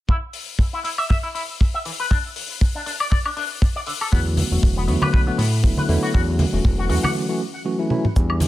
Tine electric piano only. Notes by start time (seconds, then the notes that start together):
4.12 D3 F#3 A3 B3 F#4
4.51 D3 F#3 A3 B3 F#4
4.87 D3 F#3 A3 B3 F#4
5.27 D3 F#3 A3 B3 F#4
5.63 D3 F#3 A3 B3 E4
5.88 D3 F#3 A3 B3 E4
6.14 E3 F#3 A3 C#4 F#4
6.53 E3 F#3 A3 C#4 F#4
6.89 E3 F#3 A3 C#4 F#4
7.28 E3 F#3 A3 C#4 F#4
7.65 E3 F#3 A3 C#4 F#4
7.79 E3 F#3 A3 C#4 E4
7.90 E3 F#3 A3 C#4 E4
8.15 E3 G3 B3 D4 G4